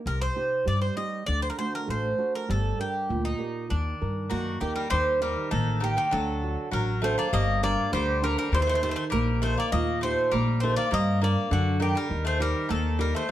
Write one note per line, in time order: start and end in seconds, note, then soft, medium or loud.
0.06 0.27 C2 medium
0.06 0.66 C3 medium
0.06 0.21 A#4 medium
0.22 0.67 C5 medium
0.36 0.85 C4 soft
0.36 0.85 D#4 soft
0.36 0.85 G4 medium
0.65 0.88 G2 medium
0.65 1.25 G3 medium
0.65 0.81 D5 medium
0.82 0.96 C5 medium
0.96 1.21 C4 soft
0.96 1.21 D#4 soft
0.96 1.22 G4 medium
0.96 1.26 D#5 medium
1.26 1.49 D2 loud
1.26 1.87 D3 medium
1.26 1.41 D5 loud
1.42 1.49 C5 medium
1.50 1.57 A#4 medium
1.58 1.86 A3 soft
1.58 2.08 D4 soft
1.58 2.08 F#4 medium
1.58 1.75 C5 medium
1.75 1.90 A#4 medium
1.88 2.10 A1 medium
1.88 2.17 A3 medium
1.88 2.32 C5 medium
2.18 2.43 A3 soft
2.18 2.43 D4 soft
2.18 2.43 F#4 medium
2.35 2.49 A#4 medium
2.49 2.71 G1 loud
2.49 3.08 G3 medium
2.49 2.80 A4 medium
2.79 3.28 D4 soft
2.79 3.28 G4 soft
2.79 3.23 G4 medium
2.79 3.28 A#4 medium
3.09 3.32 D2 medium
3.09 3.69 A#2 medium
3.25 3.67 D#4 medium
3.38 3.64 G4 soft
3.38 3.64 A#4 medium
3.38 3.64 D5 soft
3.69 3.92 D#2 loud
3.69 4.29 D#3 medium
3.69 4.57 D4 medium
4.01 4.29 G2 medium
4.01 4.50 A#4 medium
4.30 4.59 F#2 medium
4.30 4.59 D#3 medium
4.30 4.89 A#3 medium
4.30 4.59 F#4 medium
4.60 4.89 D#2 medium
4.60 4.75 D#3 medium
4.60 4.85 D#4 soft
4.60 4.75 G4 medium
4.60 4.86 G4 soft
4.60 4.86 A#4 medium
4.76 4.89 G3 medium
4.76 4.90 A#4 medium
4.90 5.34 D#2 medium
4.90 5.50 D#3 medium
4.90 5.19 G3 medium
4.90 5.21 C5 loud
5.20 5.50 G3 medium
5.20 5.69 D#4 soft
5.20 5.69 G4 soft
5.20 5.51 A#4 medium
5.51 5.94 A1 medium
5.51 5.79 D#3 medium
5.51 6.10 A#3 medium
5.51 5.83 A4 medium
5.80 5.95 D#3 medium
5.80 6.06 D#4 soft
5.80 6.06 G4 soft
5.80 5.97 G4 medium
5.80 6.07 A#4 medium
5.97 6.11 D#3 medium
5.97 6.13 G4 medium
6.11 6.55 D2 loud
6.11 6.71 D3 medium
6.11 6.68 F#3 medium
6.11 6.69 A4 loud
6.43 6.91 D4 medium
6.43 6.91 F#4 soft
6.71 7.14 A1 medium
6.71 7.00 F#3 medium
6.71 7.31 F#3 medium
6.71 7.01 A#4 medium
7.02 7.16 A3 medium
7.02 7.27 D4 medium
7.02 7.27 F#4 soft
7.02 7.27 A4 medium
7.02 7.18 C5 loud
7.18 7.32 A#3 medium
7.18 7.32 D5 medium
7.33 7.75 G1 loud
7.33 7.91 G3 medium
7.33 7.61 A#3 medium
7.33 7.63 D#5 loud
7.62 7.91 A#3 medium
7.62 8.10 D4 medium
7.62 8.10 G4 soft
7.62 8.11 A#4 medium
7.62 7.91 D5 loud
7.92 8.35 D2 medium
7.92 8.50 D3 medium
7.92 8.21 G3 medium
7.92 8.24 C5 medium
8.22 8.37 G3 medium
8.22 8.46 D4 medium
8.22 8.47 G4 soft
8.22 8.47 A#4 medium
8.22 8.37 A#4 medium
8.38 8.52 G3 medium
8.38 8.54 A#4 medium
8.52 8.94 D#2 medium
8.52 9.11 D#3 medium
8.52 8.60 G3 medium
8.52 8.61 C5 loud
8.61 8.66 A3 medium
8.61 8.68 C5 medium
8.67 8.72 A3 medium
8.67 8.74 C5 medium
8.74 8.81 A3 medium
8.74 8.82 C5 medium
8.82 8.88 A3 medium
8.82 9.30 D#4 soft
8.82 9.31 G4 soft
8.82 9.31 A#4 medium
8.82 8.90 C5 medium
8.89 8.94 A3 medium
8.89 8.95 C5 medium
8.96 9.03 A3 medium
8.96 9.04 C5 medium
9.10 9.54 A#1 medium
9.10 9.39 G3 medium
9.10 9.71 A#3 medium
9.10 9.43 A#4 medium
9.42 9.56 A3 medium
9.42 9.90 D#4 medium
9.42 9.90 G4 soft
9.42 9.90 A#4 medium
9.42 9.56 C5 medium
9.58 9.71 A#3 medium
9.58 9.72 D5 medium
9.72 10.14 D#2 medium
9.72 10.30 A#2 medium
9.72 10.00 A#3 medium
9.72 10.00 D#5 loud
10.01 10.29 A3 medium
10.01 10.51 D#4 medium
10.01 10.51 G4 soft
10.01 10.33 C5 medium
10.31 10.74 A#1 medium
10.31 10.59 G3 medium
10.31 10.91 A#3 medium
10.31 10.59 A#4 medium
10.60 10.76 A3 medium
10.60 10.86 D#4 medium
10.60 10.86 G4 soft
10.60 10.87 A#4 medium
10.60 10.75 C5 medium
10.76 10.90 A#3 medium
10.76 10.92 D5 medium
10.91 11.34 G2 loud
10.91 11.49 G3 medium
10.91 11.19 A#3 medium
10.91 11.20 D#5 loud
11.21 11.49 A#3 medium
11.21 11.69 D4 soft
11.21 11.70 A#4 medium
11.21 11.50 D5 medium
11.51 11.93 F#2 medium
11.51 12.08 D3 medium
11.51 11.79 D3 medium
11.51 11.80 F#4 medium
11.80 11.94 D#3 medium
11.80 12.04 D4 soft
11.80 12.04 G4 soft
11.80 11.97 G4 medium
11.80 12.05 A#4 medium
11.95 12.23 G3 medium
11.95 12.26 A#4 medium
12.09 12.52 D#2 medium
12.09 12.67 D#3 medium
12.25 12.39 A3 medium
12.25 12.41 C5 medium
12.39 12.68 G3 medium
12.39 12.87 D#4 soft
12.39 12.87 G4 soft
12.39 12.69 A#4 medium
12.69 13.12 D#2 medium
12.69 12.97 D#3 medium
12.69 13.27 A#3 medium
12.69 12.98 A4 medium
12.99 13.13 G3 medium
12.99 13.23 D#4 medium
12.99 13.23 G4 soft
12.99 13.23 A#4 medium
12.99 13.14 A#4 medium
13.15 13.28 A3 medium
13.15 13.29 C5 medium